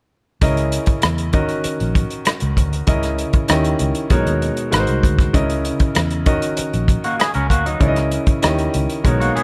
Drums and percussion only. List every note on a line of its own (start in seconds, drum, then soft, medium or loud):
0.41 kick medium
0.41 closed hi-hat medium
0.57 closed hi-hat soft
0.72 closed hi-hat medium
0.86 kick medium
0.86 closed hi-hat soft
1.02 cross-stick loud
1.02 closed hi-hat medium
1.18 closed hi-hat soft
1.33 kick medium
1.33 closed hi-hat medium
1.48 closed hi-hat soft
1.64 closed hi-hat medium
1.80 closed hi-hat soft
1.95 kick medium
1.95 closed hi-hat soft
2.10 closed hi-hat soft
2.25 cross-stick loud
2.25 closed hi-hat medium
2.40 closed hi-hat soft
2.57 kick medium
2.57 closed hi-hat medium
2.73 closed hi-hat soft
2.87 kick medium
2.87 closed hi-hat medium
3.03 cross-stick soft
3.03 closed hi-hat soft
3.18 closed hi-hat medium
3.33 kick medium
3.33 closed hi-hat soft
3.48 cross-stick loud
3.48 closed hi-hat medium
3.64 closed hi-hat soft
3.79 closed hi-hat medium
3.95 closed hi-hat soft
4.10 kick medium
4.10 closed hi-hat medium
4.26 closed hi-hat soft
4.42 closed hi-hat soft
4.57 closed hi-hat soft
4.72 cross-stick loud
4.72 closed hi-hat medium
4.87 closed hi-hat soft
5.03 kick medium
5.03 closed hi-hat medium
5.19 kick medium
5.19 cross-stick soft
5.19 closed hi-hat soft
5.34 kick medium
5.34 closed hi-hat medium
5.50 closed hi-hat soft
5.65 closed hi-hat medium
5.79 kick medium
5.79 closed hi-hat soft
5.95 cross-stick loud
5.95 closed hi-hat medium
6.10 closed hi-hat soft
6.26 kick medium
6.26 closed hi-hat medium
6.42 closed hi-hat soft
6.57 closed hi-hat medium
6.73 closed hi-hat soft
6.88 kick medium
6.88 closed hi-hat medium
7.04 closed hi-hat soft
7.20 cross-stick loud
7.20 closed hi-hat medium
7.34 closed hi-hat soft
7.50 kick medium
7.50 closed hi-hat medium
7.66 closed hi-hat soft
7.80 kick medium
7.80 closed hi-hat medium
7.96 cross-stick soft
7.96 closed hi-hat soft
8.11 closed hi-hat medium
8.26 kick medium
8.26 closed hi-hat soft
8.42 cross-stick loud
8.42 closed hi-hat medium
8.58 closed hi-hat soft
8.74 closed hi-hat medium
8.89 closed hi-hat soft
9.04 kick medium
9.04 closed hi-hat medium
9.21 closed hi-hat soft
9.36 closed hi-hat soft